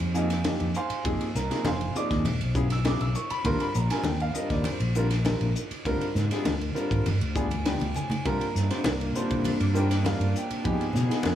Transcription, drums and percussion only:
0.00 ride medium
0.15 hi-hat pedal medium
0.30 snare soft
0.30 ride medium
0.44 snare loud
0.44 ride medium
0.44 high conga medium
0.60 ride soft
0.74 hi-hat pedal medium
0.74 muted conga soft
0.90 ride medium
1.05 kick loud
1.05 ride medium
1.21 ride medium
1.35 snare soft
1.35 hi-hat pedal medium
1.35 muted conga soft
1.51 snare soft
1.51 ride medium
1.65 snare loud
1.65 ride medium
1.65 high conga medium
1.81 ride medium
1.96 hi-hat pedal medium
2.11 kick medium
2.11 snare soft
2.11 ride soft
2.25 ride medium
2.25 muted conga soft
2.25 high conga medium
2.41 ride medium
2.55 kick medium
2.55 hi-hat pedal medium
2.70 snare soft
2.70 ride medium
2.85 snare loud
2.85 ride medium
2.85 high conga medium
3.01 ride medium
3.15 hi-hat pedal medium
3.15 muted conga soft
3.30 ride medium
3.45 kick loud
3.45 ride medium
3.45 muted conga soft
3.60 ride medium
3.74 hi-hat pedal medium
3.74 muted conga soft
3.90 snare soft
3.90 ride medium
4.04 snare loud
4.04 ride medium
4.04 high conga medium
4.20 ride medium
4.35 hi-hat pedal loud
4.50 kick medium
4.50 snare soft
4.50 ride medium
4.64 ride medium
4.64 muted conga soft
4.64 high conga medium
4.80 ride medium
4.95 hi-hat pedal medium
5.11 snare soft
5.11 ride medium
5.25 snare loud
5.25 ride medium
5.25 high conga medium
5.41 ride medium
5.56 hi-hat pedal medium
5.56 muted conga soft
5.71 ride medium
5.85 kick medium
5.85 ride medium
6.01 ride medium
6.16 snare soft
6.16 hi-hat pedal medium
6.16 muted conga soft
6.16 low conga medium
6.31 snare soft
6.31 ride medium
6.45 snare loud
6.45 ride medium
6.45 high conga medium
6.61 ride medium
6.76 hi-hat pedal medium
6.91 kick medium
6.91 ride medium
7.06 ride medium
7.06 muted conga soft
7.06 high conga medium
7.21 ride medium
7.36 kick medium
7.36 hi-hat pedal medium
7.51 ride medium
7.51 high conga medium
7.65 snare loud
7.65 ride medium
7.65 high conga medium
7.80 ride medium
7.80 high conga medium
7.95 hi-hat pedal medium
7.95 low conga medium
8.10 ride medium
8.10 low conga medium
8.25 kick loud
8.25 ride medium
8.41 ride medium
8.55 snare soft
8.55 hi-hat pedal medium
8.55 muted conga soft
8.71 snare soft
8.71 ride medium
8.84 snare loud
8.84 ride medium
8.84 high conga medium
9.01 ride medium
9.15 hi-hat pedal medium
9.31 kick medium
9.31 ride medium
9.44 ride medium
9.44 muted conga soft
9.44 high conga medium
9.60 ride medium
9.75 hi-hat pedal medium
9.91 snare soft
9.91 ride medium
10.05 snare loud
10.05 ride medium
10.05 high conga medium
10.21 ride medium
10.35 hi-hat pedal medium
10.35 muted conga soft
10.51 ride medium
10.64 kick loud
10.64 ride medium
10.64 muted conga soft
10.81 ride medium
10.93 snare soft
10.93 hi-hat pedal medium
10.93 muted conga soft
10.93 low conga medium
11.11 snare soft
11.11 ride medium
11.23 snare loud
11.23 ride medium
11.23 high conga medium

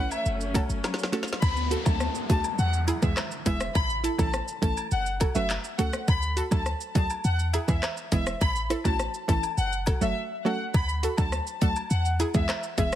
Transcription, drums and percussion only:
0.11 high woodblock medium
0.11 shaker medium
0.26 shaker medium
0.41 shaker medium
0.55 kick medium
0.55 closed hi-hat medium
0.55 cabasa medium
0.55 high woodblock medium
0.55 shaker medium
0.70 shaker medium
0.84 snare medium
0.84 high woodblock medium
0.84 shaker medium
0.94 snare medium
0.99 shaker soft
1.03 snare medium
1.13 snare medium
1.13 closed hi-hat medium
1.13 cabasa medium
1.13 shaker medium
1.23 snare loud
1.28 shaker medium
1.33 snare medium
1.42 kick loud
1.42 high woodblock medium
1.42 shaker medium
1.57 shaker medium
1.71 closed hi-hat medium
1.71 cabasa medium
1.71 shaker medium
1.85 kick loud
1.85 high woodblock medium
1.85 shaker medium
2.00 cross-stick medium
2.00 shaker medium
2.15 shaker medium
2.30 kick medium
2.30 closed hi-hat medium
2.30 cabasa medium
2.30 shaker soft
2.44 high woodblock medium
2.44 shaker medium
2.59 shaker medium
2.73 shaker medium
2.88 closed hi-hat medium
2.88 cabasa medium
2.88 high woodblock medium
2.88 shaker medium
3.02 kick medium
3.02 shaker medium
3.17 cross-stick loud
3.17 clap loud
3.17 high woodblock medium
3.17 shaker medium
3.31 shaker medium
3.46 kick loud
3.46 closed hi-hat medium
3.46 cabasa medium
3.46 shaker medium
3.60 cross-stick loud
3.60 shaker medium
3.75 kick loud
3.75 high woodblock medium
3.75 shaker medium
3.90 shaker medium
4.04 closed hi-hat loud
4.04 cabasa medium
4.04 shaker medium
4.18 kick loud
4.18 high woodblock medium
4.18 shaker medium
4.34 cross-stick medium
4.34 shaker medium
4.48 shaker medium
4.63 kick loud
4.63 closed hi-hat medium
4.63 cabasa medium
4.63 shaker soft
4.77 high woodblock medium
4.77 shaker medium
4.91 shaker medium
5.06 shaker medium
5.21 kick loud
5.21 closed hi-hat medium
5.21 cabasa medium
5.21 high woodblock medium
5.21 shaker medium
5.35 shaker medium
5.50 clap loud
5.50 high woodblock medium
5.50 shaker medium
5.64 shaker medium
5.79 closed hi-hat medium
5.79 cabasa medium
5.79 shaker medium
5.93 cross-stick loud
5.93 shaker medium
6.08 kick loud
6.08 high woodblock medium
6.08 shaker medium
6.22 shaker medium
6.37 closed hi-hat medium
6.37 cabasa medium
6.37 shaker medium
6.52 kick loud
6.52 high woodblock medium
6.52 shaker medium
6.66 cross-stick medium
6.66 shaker medium
6.81 shaker medium
6.95 kick loud
6.95 closed hi-hat medium
6.95 cabasa medium
6.95 shaker soft
7.10 high woodblock medium
7.10 shaker medium
7.24 shaker medium
7.39 shaker medium
7.54 closed hi-hat medium
7.54 cabasa medium
7.54 high woodblock medium
7.54 shaker medium
7.68 kick medium
7.68 shaker medium
7.83 cross-stick loud
7.83 clap loud
7.83 high woodblock medium
7.83 shaker medium
7.97 shaker medium
8.12 kick loud
8.12 closed hi-hat medium
8.12 cabasa medium
8.12 shaker medium
8.27 cross-stick loud
8.27 shaker medium
8.41 kick loud
8.41 high woodblock medium
8.41 shaker medium
8.56 shaker medium
8.70 cross-stick medium
8.70 closed hi-hat medium
8.70 cabasa medium
8.70 shaker medium
8.84 kick loud
8.84 high woodblock medium
8.84 shaker medium
9.00 cross-stick medium
9.00 shaker medium
9.14 shaker medium
9.29 kick loud
9.29 closed hi-hat medium
9.29 cabasa medium
9.29 shaker soft
9.43 high woodblock medium
9.43 shaker medium
9.58 shaker medium
9.73 shaker medium
9.86 kick loud
9.86 closed hi-hat medium
9.86 cabasa medium
9.86 high woodblock medium
9.86 shaker medium
10.02 shaker medium
10.74 kick loud
10.74 high woodblock medium
10.74 shaker medium
10.89 shaker medium
11.03 closed hi-hat medium
11.03 cabasa medium
11.03 shaker medium
11.17 kick loud
11.17 high woodblock medium
11.17 shaker medium
11.32 cross-stick medium
11.32 shaker medium
11.47 shaker medium
11.62 kick medium
11.62 closed hi-hat medium
11.62 cabasa medium
11.62 shaker soft
11.76 high woodblock medium
11.76 shaker medium
11.90 shaker medium
12.05 shaker medium
12.20 closed hi-hat medium
12.20 cabasa medium
12.20 high woodblock medium
12.20 shaker medium
12.34 kick medium
12.34 shaker medium
12.49 cross-stick loud
12.49 clap loud
12.49 high woodblock medium
12.49 shaker medium
12.63 shaker medium
12.78 kick loud
12.78 closed hi-hat medium
12.78 cabasa medium
12.78 shaker medium

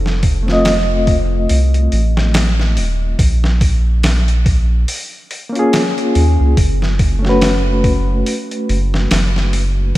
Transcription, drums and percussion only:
0.06 snare soft
0.23 kick medium
0.23 open hi-hat medium
0.48 snare soft
0.65 snare loud
0.65 open hi-hat medium
1.07 kick medium
1.07 open hi-hat medium
1.49 open hi-hat medium
1.74 closed hi-hat soft
1.92 open hi-hat medium
2.17 snare medium
2.34 snare loud
2.34 open hi-hat medium
2.60 snare soft
2.77 open hi-hat medium
3.19 kick loud
3.19 open hi-hat medium
3.44 snare medium
3.61 kick medium
3.61 open hi-hat medium
4.03 snare loud
4.03 open hi-hat medium
4.28 closed hi-hat soft
4.46 kick medium
4.46 open hi-hat medium
4.88 open hi-hat medium
5.31 open hi-hat medium
5.55 closed hi-hat soft
5.73 snare loud
5.73 open hi-hat medium
5.98 closed hi-hat soft
6.15 open hi-hat medium
6.57 kick loud
6.57 open hi-hat medium
6.82 snare soft
6.99 kick medium
6.99 open hi-hat medium
7.25 snare soft
7.41 snare loud
7.41 open hi-hat medium
7.84 kick medium
7.84 open hi-hat medium
8.26 open hi-hat medium
8.51 closed hi-hat soft
8.69 open hi-hat medium
8.94 snare medium
9.11 snare loud
9.11 open hi-hat medium
9.36 snare soft
9.53 open hi-hat medium

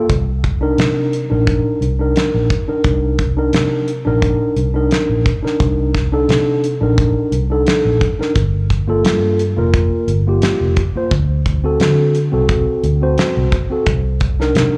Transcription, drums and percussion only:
0.09 kick medium
0.09 closed hi-hat medium
0.44 kick medium
0.44 closed hi-hat medium
0.78 snare loud
0.78 closed hi-hat medium
1.13 closed hi-hat soft
1.47 kick medium
1.47 closed hi-hat medium
1.82 closed hi-hat medium
2.16 snare loud
2.16 closed hi-hat medium
2.50 kick medium
2.50 closed hi-hat medium
2.84 kick loud
2.84 closed hi-hat medium
3.19 kick medium
3.19 closed hi-hat medium
3.53 snare loud
3.53 closed hi-hat medium
3.88 closed hi-hat medium
4.22 kick loud
4.22 closed hi-hat medium
4.57 closed hi-hat medium
4.91 snare loud
4.91 closed hi-hat medium
5.26 kick medium
5.26 closed hi-hat medium
5.46 snare soft
5.60 kick loud
5.60 closed hi-hat medium
5.94 kick medium
5.94 snare soft
5.94 closed hi-hat medium
6.29 snare loud
6.29 closed hi-hat medium
6.64 closed hi-hat soft
6.98 kick loud
6.98 closed hi-hat medium
7.32 closed hi-hat medium
7.66 snare loud
7.66 closed hi-hat medium
8.01 kick medium
8.01 closed hi-hat medium
8.22 snare soft
8.35 kick loud
8.35 closed hi-hat medium
8.70 kick medium
8.70 closed hi-hat medium
9.05 snare loud
9.05 closed hi-hat medium
9.39 closed hi-hat medium
9.74 kick loud
9.74 closed hi-hat medium
10.08 closed hi-hat medium
10.42 snare loud
10.42 closed hi-hat medium
10.77 kick medium
10.77 closed hi-hat medium
11.11 kick loud
11.11 closed hi-hat medium
11.46 kick medium
11.46 closed hi-hat medium
11.80 snare loud
11.80 closed hi-hat medium
12.15 closed hi-hat medium
12.49 kick loud
12.49 closed hi-hat medium
12.84 closed hi-hat medium
13.18 snare loud
13.18 closed hi-hat medium
13.52 kick medium
13.52 closed hi-hat medium
13.86 kick loud
13.86 closed hi-hat medium
14.20 kick medium
14.20 closed hi-hat medium
14.41 snare soft
14.55 snare loud
14.55 closed hi-hat medium

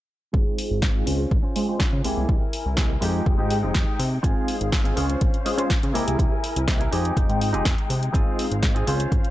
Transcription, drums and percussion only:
0.34 kick loud
0.58 open hi-hat loud
0.82 kick loud
0.82 snare loud
1.07 open hi-hat loud
1.31 kick loud
1.56 open hi-hat loud
1.80 kick loud
1.80 snare loud
2.04 open hi-hat loud
2.29 kick loud
2.53 open hi-hat loud
2.77 kick loud
2.77 snare loud
3.02 open hi-hat loud
3.26 kick loud
3.51 open hi-hat loud
3.75 kick loud
3.75 snare loud
4.00 open hi-hat loud
4.24 kick loud
4.24 closed hi-hat medium
4.48 open hi-hat loud
4.61 closed hi-hat medium
4.72 kick loud
4.72 snare loud
4.72 closed hi-hat medium
4.85 closed hi-hat soft
4.97 open hi-hat loud
5.10 closed hi-hat medium
5.21 kick loud
5.21 closed hi-hat medium
5.34 closed hi-hat soft
5.46 open hi-hat loud
5.58 closed hi-hat medium
5.70 kick loud
5.70 snare loud
5.70 closed hi-hat medium
5.83 closed hi-hat soft
5.95 open hi-hat loud
6.08 closed hi-hat medium
6.19 kick loud
6.19 closed hi-hat medium
6.44 open hi-hat loud
6.56 closed hi-hat medium
6.68 kick loud
6.68 snare loud
6.68 closed hi-hat medium
6.81 closed hi-hat soft
6.93 open hi-hat loud
7.05 closed hi-hat soft
7.17 kick loud
7.17 closed hi-hat medium
7.30 closed hi-hat soft
7.41 open hi-hat loud
7.54 closed hi-hat soft
7.65 kick loud
7.65 snare loud
7.65 closed hi-hat medium
7.78 closed hi-hat soft
7.90 open hi-hat loud
8.03 closed hi-hat medium
8.14 kick loud
8.14 closed hi-hat medium
8.39 open hi-hat loud
8.52 closed hi-hat soft
8.63 kick loud
8.63 snare loud
8.63 closed hi-hat medium
8.76 closed hi-hat soft
8.87 open hi-hat loud
9.00 closed hi-hat soft
9.12 kick loud
9.12 closed hi-hat medium
9.25 closed hi-hat soft

